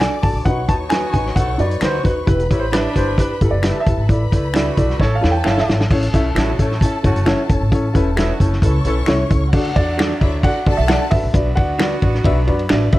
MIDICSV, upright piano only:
0, 0, Header, 1, 2, 480
1, 0, Start_track
1, 0, Tempo, 453515
1, 488, Time_signature, 4, 2, 24, 8
1, 13748, End_track
2, 0, Start_track
2, 0, Title_t, "Upright piano"
2, 0, Program_c, 0, 0
2, 4, Note_on_c, 0, 62, 72
2, 9, Note_on_c, 0, 66, 69
2, 17, Note_on_c, 0, 69, 78
2, 135, Note_off_c, 0, 62, 0
2, 137, Note_off_c, 0, 66, 0
2, 141, Note_off_c, 0, 69, 0
2, 244, Note_on_c, 0, 62, 68
2, 250, Note_on_c, 0, 66, 70
2, 252, Note_on_c, 0, 69, 75
2, 375, Note_off_c, 0, 62, 0
2, 378, Note_off_c, 0, 66, 0
2, 379, Note_off_c, 0, 69, 0
2, 492, Note_on_c, 0, 63, 97
2, 499, Note_on_c, 0, 66, 90
2, 506, Note_on_c, 0, 71, 104
2, 619, Note_off_c, 0, 63, 0
2, 623, Note_off_c, 0, 66, 0
2, 626, Note_off_c, 0, 71, 0
2, 720, Note_on_c, 0, 63, 70
2, 726, Note_on_c, 0, 66, 74
2, 734, Note_on_c, 0, 71, 80
2, 853, Note_off_c, 0, 63, 0
2, 856, Note_off_c, 0, 66, 0
2, 860, Note_off_c, 0, 71, 0
2, 953, Note_on_c, 0, 63, 67
2, 959, Note_on_c, 0, 66, 65
2, 963, Note_on_c, 0, 71, 74
2, 1090, Note_off_c, 0, 63, 0
2, 1093, Note_off_c, 0, 66, 0
2, 1095, Note_off_c, 0, 71, 0
2, 1199, Note_on_c, 0, 63, 87
2, 1199, Note_on_c, 0, 66, 81
2, 1209, Note_on_c, 0, 71, 97
2, 1333, Note_off_c, 0, 63, 0
2, 1333, Note_off_c, 0, 66, 0
2, 1338, Note_off_c, 0, 71, 0
2, 1437, Note_on_c, 0, 63, 67
2, 1442, Note_on_c, 0, 66, 68
2, 1448, Note_on_c, 0, 71, 80
2, 1572, Note_off_c, 0, 63, 0
2, 1574, Note_off_c, 0, 66, 0
2, 1578, Note_off_c, 0, 71, 0
2, 1672, Note_on_c, 0, 63, 99
2, 1682, Note_on_c, 0, 66, 93
2, 1685, Note_on_c, 0, 71, 101
2, 1809, Note_off_c, 0, 63, 0
2, 1815, Note_off_c, 0, 66, 0
2, 1816, Note_off_c, 0, 71, 0
2, 1913, Note_on_c, 0, 66, 65
2, 1914, Note_on_c, 0, 63, 78
2, 1918, Note_on_c, 0, 71, 87
2, 2050, Note_off_c, 0, 66, 0
2, 2051, Note_off_c, 0, 63, 0
2, 2053, Note_off_c, 0, 71, 0
2, 2152, Note_on_c, 0, 63, 73
2, 2160, Note_on_c, 0, 66, 66
2, 2165, Note_on_c, 0, 71, 71
2, 2290, Note_off_c, 0, 63, 0
2, 2294, Note_off_c, 0, 66, 0
2, 2296, Note_off_c, 0, 71, 0
2, 2394, Note_on_c, 0, 64, 104
2, 2401, Note_on_c, 0, 67, 87
2, 2402, Note_on_c, 0, 71, 108
2, 2531, Note_off_c, 0, 64, 0
2, 2534, Note_off_c, 0, 67, 0
2, 2535, Note_off_c, 0, 71, 0
2, 2635, Note_on_c, 0, 64, 76
2, 2643, Note_on_c, 0, 67, 74
2, 2649, Note_on_c, 0, 73, 93
2, 2772, Note_off_c, 0, 64, 0
2, 2775, Note_off_c, 0, 67, 0
2, 2778, Note_off_c, 0, 73, 0
2, 2879, Note_on_c, 0, 67, 67
2, 2882, Note_on_c, 0, 64, 74
2, 2889, Note_on_c, 0, 73, 79
2, 3014, Note_off_c, 0, 67, 0
2, 3015, Note_off_c, 0, 64, 0
2, 3019, Note_off_c, 0, 73, 0
2, 3127, Note_on_c, 0, 64, 90
2, 3130, Note_on_c, 0, 67, 78
2, 3132, Note_on_c, 0, 71, 101
2, 3257, Note_off_c, 0, 64, 0
2, 3259, Note_off_c, 0, 67, 0
2, 3260, Note_off_c, 0, 71, 0
2, 3364, Note_on_c, 0, 64, 66
2, 3369, Note_on_c, 0, 67, 69
2, 3375, Note_on_c, 0, 71, 76
2, 3496, Note_off_c, 0, 64, 0
2, 3498, Note_off_c, 0, 67, 0
2, 3502, Note_off_c, 0, 71, 0
2, 3611, Note_on_c, 0, 64, 94
2, 3616, Note_on_c, 0, 67, 98
2, 3619, Note_on_c, 0, 69, 109
2, 3739, Note_off_c, 0, 64, 0
2, 3742, Note_off_c, 0, 67, 0
2, 3744, Note_off_c, 0, 69, 0
2, 3857, Note_on_c, 0, 64, 78
2, 3858, Note_on_c, 0, 67, 73
2, 3866, Note_on_c, 0, 71, 89
2, 3983, Note_off_c, 0, 64, 0
2, 3983, Note_off_c, 0, 67, 0
2, 3987, Note_off_c, 0, 71, 0
2, 4089, Note_on_c, 0, 64, 76
2, 4096, Note_on_c, 0, 67, 69
2, 4099, Note_on_c, 0, 71, 81
2, 4219, Note_off_c, 0, 64, 0
2, 4222, Note_off_c, 0, 67, 0
2, 4224, Note_off_c, 0, 71, 0
2, 4324, Note_on_c, 0, 64, 106
2, 4332, Note_on_c, 0, 69, 86
2, 4333, Note_on_c, 0, 74, 114
2, 4456, Note_off_c, 0, 64, 0
2, 4460, Note_off_c, 0, 69, 0
2, 4461, Note_off_c, 0, 74, 0
2, 4567, Note_on_c, 0, 64, 75
2, 4569, Note_on_c, 0, 69, 65
2, 4575, Note_on_c, 0, 74, 88
2, 4698, Note_off_c, 0, 64, 0
2, 4699, Note_off_c, 0, 69, 0
2, 4702, Note_off_c, 0, 74, 0
2, 4806, Note_on_c, 0, 64, 90
2, 4815, Note_on_c, 0, 69, 76
2, 4818, Note_on_c, 0, 74, 94
2, 4938, Note_off_c, 0, 64, 0
2, 4942, Note_off_c, 0, 69, 0
2, 4943, Note_off_c, 0, 74, 0
2, 5047, Note_on_c, 0, 64, 107
2, 5051, Note_on_c, 0, 69, 96
2, 5056, Note_on_c, 0, 74, 127
2, 5178, Note_off_c, 0, 64, 0
2, 5180, Note_off_c, 0, 69, 0
2, 5182, Note_off_c, 0, 74, 0
2, 5289, Note_on_c, 0, 64, 64
2, 5294, Note_on_c, 0, 69, 65
2, 5302, Note_on_c, 0, 73, 78
2, 5419, Note_off_c, 0, 64, 0
2, 5422, Note_off_c, 0, 69, 0
2, 5426, Note_off_c, 0, 73, 0
2, 5514, Note_on_c, 0, 64, 102
2, 5523, Note_on_c, 0, 69, 92
2, 5523, Note_on_c, 0, 73, 113
2, 5652, Note_off_c, 0, 64, 0
2, 5656, Note_off_c, 0, 69, 0
2, 5656, Note_off_c, 0, 73, 0
2, 5758, Note_on_c, 0, 64, 77
2, 5764, Note_on_c, 0, 69, 73
2, 5770, Note_on_c, 0, 73, 85
2, 5894, Note_off_c, 0, 64, 0
2, 5897, Note_off_c, 0, 69, 0
2, 5900, Note_off_c, 0, 73, 0
2, 6002, Note_on_c, 0, 64, 76
2, 6004, Note_on_c, 0, 69, 67
2, 6009, Note_on_c, 0, 73, 84
2, 6136, Note_off_c, 0, 64, 0
2, 6137, Note_off_c, 0, 69, 0
2, 6140, Note_off_c, 0, 73, 0
2, 6252, Note_on_c, 0, 61, 106
2, 6252, Note_on_c, 0, 64, 89
2, 6256, Note_on_c, 0, 69, 89
2, 6263, Note_on_c, 0, 73, 110
2, 6381, Note_off_c, 0, 61, 0
2, 6381, Note_off_c, 0, 64, 0
2, 6383, Note_off_c, 0, 69, 0
2, 6386, Note_off_c, 0, 73, 0
2, 6494, Note_on_c, 0, 61, 111
2, 6498, Note_on_c, 0, 64, 109
2, 6505, Note_on_c, 0, 69, 102
2, 6505, Note_on_c, 0, 76, 124
2, 6622, Note_off_c, 0, 61, 0
2, 6624, Note_off_c, 0, 64, 0
2, 6627, Note_off_c, 0, 69, 0
2, 6627, Note_off_c, 0, 76, 0
2, 6728, Note_on_c, 0, 61, 80
2, 6736, Note_on_c, 0, 69, 82
2, 6738, Note_on_c, 0, 64, 72
2, 6742, Note_on_c, 0, 73, 105
2, 6859, Note_off_c, 0, 61, 0
2, 6863, Note_off_c, 0, 69, 0
2, 6864, Note_off_c, 0, 64, 0
2, 6866, Note_off_c, 0, 73, 0
2, 6977, Note_on_c, 0, 69, 82
2, 6978, Note_on_c, 0, 61, 81
2, 6980, Note_on_c, 0, 64, 73
2, 6983, Note_on_c, 0, 73, 97
2, 7103, Note_off_c, 0, 69, 0
2, 7104, Note_off_c, 0, 61, 0
2, 7105, Note_off_c, 0, 64, 0
2, 7107, Note_off_c, 0, 73, 0
2, 7213, Note_on_c, 0, 61, 83
2, 7218, Note_on_c, 0, 64, 81
2, 7218, Note_on_c, 0, 69, 80
2, 7221, Note_on_c, 0, 73, 88
2, 7342, Note_off_c, 0, 61, 0
2, 7344, Note_off_c, 0, 64, 0
2, 7344, Note_off_c, 0, 69, 0
2, 7346, Note_off_c, 0, 73, 0
2, 7440, Note_on_c, 0, 61, 88
2, 7444, Note_on_c, 0, 64, 86
2, 7449, Note_on_c, 0, 69, 83
2, 7451, Note_on_c, 0, 73, 105
2, 7575, Note_off_c, 0, 61, 0
2, 7577, Note_off_c, 0, 64, 0
2, 7580, Note_off_c, 0, 69, 0
2, 7581, Note_off_c, 0, 73, 0
2, 7683, Note_on_c, 0, 61, 127
2, 7684, Note_on_c, 0, 64, 101
2, 7691, Note_on_c, 0, 69, 104
2, 7692, Note_on_c, 0, 73, 127
2, 7817, Note_off_c, 0, 61, 0
2, 7817, Note_off_c, 0, 64, 0
2, 7821, Note_off_c, 0, 69, 0
2, 7821, Note_off_c, 0, 73, 0
2, 7936, Note_on_c, 0, 61, 80
2, 7937, Note_on_c, 0, 64, 79
2, 7940, Note_on_c, 0, 69, 84
2, 7945, Note_on_c, 0, 73, 102
2, 8063, Note_off_c, 0, 61, 0
2, 8064, Note_off_c, 0, 64, 0
2, 8065, Note_off_c, 0, 69, 0
2, 8068, Note_off_c, 0, 73, 0
2, 8166, Note_on_c, 0, 61, 125
2, 8170, Note_on_c, 0, 64, 120
2, 8173, Note_on_c, 0, 69, 115
2, 8178, Note_on_c, 0, 73, 127
2, 8298, Note_off_c, 0, 61, 0
2, 8300, Note_off_c, 0, 64, 0
2, 8302, Note_off_c, 0, 69, 0
2, 8304, Note_off_c, 0, 73, 0
2, 8399, Note_on_c, 0, 61, 125
2, 8407, Note_on_c, 0, 64, 102
2, 8409, Note_on_c, 0, 69, 110
2, 8414, Note_on_c, 0, 71, 124
2, 8535, Note_off_c, 0, 61, 0
2, 8539, Note_off_c, 0, 64, 0
2, 8539, Note_off_c, 0, 69, 0
2, 8542, Note_off_c, 0, 71, 0
2, 8635, Note_on_c, 0, 61, 84
2, 8640, Note_on_c, 0, 64, 85
2, 8644, Note_on_c, 0, 69, 81
2, 8645, Note_on_c, 0, 71, 92
2, 8772, Note_off_c, 0, 61, 0
2, 8775, Note_off_c, 0, 64, 0
2, 8777, Note_off_c, 0, 69, 0
2, 8777, Note_off_c, 0, 71, 0
2, 8879, Note_on_c, 0, 61, 90
2, 8885, Note_on_c, 0, 69, 70
2, 8888, Note_on_c, 0, 64, 73
2, 8890, Note_on_c, 0, 73, 91
2, 9014, Note_off_c, 0, 61, 0
2, 9017, Note_off_c, 0, 69, 0
2, 9019, Note_off_c, 0, 64, 0
2, 9020, Note_off_c, 0, 73, 0
2, 9126, Note_on_c, 0, 61, 77
2, 9130, Note_on_c, 0, 64, 83
2, 9136, Note_on_c, 0, 69, 78
2, 9136, Note_on_c, 0, 71, 91
2, 9258, Note_off_c, 0, 61, 0
2, 9260, Note_off_c, 0, 64, 0
2, 9263, Note_off_c, 0, 69, 0
2, 9263, Note_off_c, 0, 71, 0
2, 9368, Note_on_c, 0, 61, 86
2, 9375, Note_on_c, 0, 64, 80
2, 9378, Note_on_c, 0, 69, 80
2, 9379, Note_on_c, 0, 71, 95
2, 9499, Note_off_c, 0, 61, 0
2, 9502, Note_off_c, 0, 64, 0
2, 9503, Note_off_c, 0, 69, 0
2, 9504, Note_off_c, 0, 71, 0
2, 9612, Note_on_c, 0, 61, 108
2, 9617, Note_on_c, 0, 64, 102
2, 9618, Note_on_c, 0, 69, 101
2, 9621, Note_on_c, 0, 73, 127
2, 9741, Note_off_c, 0, 61, 0
2, 9743, Note_off_c, 0, 64, 0
2, 9743, Note_off_c, 0, 69, 0
2, 9745, Note_off_c, 0, 73, 0
2, 9842, Note_on_c, 0, 64, 78
2, 9844, Note_on_c, 0, 61, 93
2, 9849, Note_on_c, 0, 69, 82
2, 9853, Note_on_c, 0, 73, 94
2, 9976, Note_off_c, 0, 61, 0
2, 9976, Note_off_c, 0, 64, 0
2, 9979, Note_off_c, 0, 69, 0
2, 9981, Note_off_c, 0, 73, 0
2, 10087, Note_on_c, 0, 62, 124
2, 10090, Note_on_c, 0, 66, 118
2, 10092, Note_on_c, 0, 69, 101
2, 10096, Note_on_c, 0, 74, 127
2, 10217, Note_off_c, 0, 62, 0
2, 10219, Note_off_c, 0, 66, 0
2, 10220, Note_off_c, 0, 69, 0
2, 10222, Note_off_c, 0, 74, 0
2, 10323, Note_on_c, 0, 62, 72
2, 10328, Note_on_c, 0, 66, 68
2, 10329, Note_on_c, 0, 69, 70
2, 10330, Note_on_c, 0, 74, 97
2, 10455, Note_off_c, 0, 62, 0
2, 10458, Note_off_c, 0, 66, 0
2, 10458, Note_off_c, 0, 69, 0
2, 10459, Note_off_c, 0, 74, 0
2, 10564, Note_on_c, 0, 62, 72
2, 10564, Note_on_c, 0, 66, 71
2, 10568, Note_on_c, 0, 69, 66
2, 10569, Note_on_c, 0, 74, 82
2, 10696, Note_off_c, 0, 62, 0
2, 10696, Note_off_c, 0, 66, 0
2, 10698, Note_off_c, 0, 69, 0
2, 10698, Note_off_c, 0, 74, 0
2, 10802, Note_on_c, 0, 62, 73
2, 10803, Note_on_c, 0, 66, 64
2, 10810, Note_on_c, 0, 69, 68
2, 10810, Note_on_c, 0, 73, 83
2, 10935, Note_off_c, 0, 62, 0
2, 10935, Note_off_c, 0, 66, 0
2, 10938, Note_off_c, 0, 69, 0
2, 10939, Note_off_c, 0, 73, 0
2, 11035, Note_on_c, 0, 62, 92
2, 11042, Note_on_c, 0, 69, 88
2, 11043, Note_on_c, 0, 74, 105
2, 11045, Note_on_c, 0, 66, 89
2, 11171, Note_off_c, 0, 62, 0
2, 11174, Note_off_c, 0, 69, 0
2, 11175, Note_off_c, 0, 74, 0
2, 11176, Note_off_c, 0, 66, 0
2, 11285, Note_on_c, 0, 66, 74
2, 11287, Note_on_c, 0, 62, 82
2, 11294, Note_on_c, 0, 74, 82
2, 11295, Note_on_c, 0, 69, 75
2, 11416, Note_off_c, 0, 66, 0
2, 11417, Note_off_c, 0, 62, 0
2, 11420, Note_off_c, 0, 74, 0
2, 11421, Note_off_c, 0, 69, 0
2, 11525, Note_on_c, 0, 62, 75
2, 11526, Note_on_c, 0, 66, 69
2, 11531, Note_on_c, 0, 69, 71
2, 11533, Note_on_c, 0, 76, 88
2, 11656, Note_off_c, 0, 62, 0
2, 11656, Note_off_c, 0, 66, 0
2, 11658, Note_off_c, 0, 69, 0
2, 11660, Note_off_c, 0, 76, 0
2, 11754, Note_on_c, 0, 62, 78
2, 11761, Note_on_c, 0, 66, 75
2, 11765, Note_on_c, 0, 69, 64
2, 11765, Note_on_c, 0, 71, 85
2, 11890, Note_off_c, 0, 62, 0
2, 11893, Note_off_c, 0, 66, 0
2, 11895, Note_off_c, 0, 69, 0
2, 11895, Note_off_c, 0, 71, 0
2, 11989, Note_on_c, 0, 62, 93
2, 11995, Note_on_c, 0, 66, 94
2, 11996, Note_on_c, 0, 71, 91
2, 12001, Note_on_c, 0, 74, 107
2, 12127, Note_off_c, 0, 62, 0
2, 12130, Note_off_c, 0, 66, 0
2, 12131, Note_off_c, 0, 71, 0
2, 12133, Note_off_c, 0, 74, 0
2, 12231, Note_on_c, 0, 62, 75
2, 12237, Note_on_c, 0, 66, 67
2, 12244, Note_on_c, 0, 71, 71
2, 12244, Note_on_c, 0, 74, 94
2, 12368, Note_off_c, 0, 62, 0
2, 12371, Note_off_c, 0, 66, 0
2, 12374, Note_off_c, 0, 71, 0
2, 12374, Note_off_c, 0, 74, 0
2, 12475, Note_on_c, 0, 62, 86
2, 12479, Note_on_c, 0, 66, 64
2, 12483, Note_on_c, 0, 71, 77
2, 12491, Note_on_c, 0, 74, 85
2, 12609, Note_off_c, 0, 62, 0
2, 12612, Note_off_c, 0, 66, 0
2, 12613, Note_off_c, 0, 71, 0
2, 12617, Note_off_c, 0, 74, 0
2, 12722, Note_on_c, 0, 62, 78
2, 12724, Note_on_c, 0, 66, 69
2, 12727, Note_on_c, 0, 71, 67
2, 12729, Note_on_c, 0, 74, 75
2, 12853, Note_off_c, 0, 62, 0
2, 12854, Note_off_c, 0, 66, 0
2, 12855, Note_off_c, 0, 71, 0
2, 12856, Note_off_c, 0, 74, 0
2, 12952, Note_on_c, 0, 62, 109
2, 12962, Note_on_c, 0, 71, 100
2, 12964, Note_on_c, 0, 66, 110
2, 12965, Note_on_c, 0, 76, 113
2, 13088, Note_off_c, 0, 62, 0
2, 13092, Note_off_c, 0, 71, 0
2, 13093, Note_off_c, 0, 66, 0
2, 13094, Note_off_c, 0, 76, 0
2, 13194, Note_on_c, 0, 62, 92
2, 13197, Note_on_c, 0, 66, 84
2, 13203, Note_on_c, 0, 83, 78
2, 13204, Note_on_c, 0, 71, 87
2, 13207, Note_on_c, 0, 74, 111
2, 13328, Note_off_c, 0, 62, 0
2, 13330, Note_off_c, 0, 66, 0
2, 13333, Note_off_c, 0, 71, 0
2, 13335, Note_off_c, 0, 74, 0
2, 13427, Note_off_c, 0, 83, 0
2, 13432, Note_on_c, 0, 62, 97
2, 13438, Note_on_c, 0, 66, 85
2, 13445, Note_on_c, 0, 71, 94
2, 13445, Note_on_c, 0, 74, 105
2, 13445, Note_on_c, 0, 76, 79
2, 13567, Note_off_c, 0, 62, 0
2, 13570, Note_off_c, 0, 66, 0
2, 13573, Note_off_c, 0, 71, 0
2, 13573, Note_off_c, 0, 74, 0
2, 13673, Note_off_c, 0, 76, 0
2, 13673, Note_on_c, 0, 62, 96
2, 13677, Note_on_c, 0, 66, 76
2, 13681, Note_on_c, 0, 71, 83
2, 13689, Note_on_c, 0, 76, 101
2, 13748, Note_off_c, 0, 62, 0
2, 13748, Note_off_c, 0, 66, 0
2, 13748, Note_off_c, 0, 71, 0
2, 13748, Note_off_c, 0, 76, 0
2, 13748, End_track
0, 0, End_of_file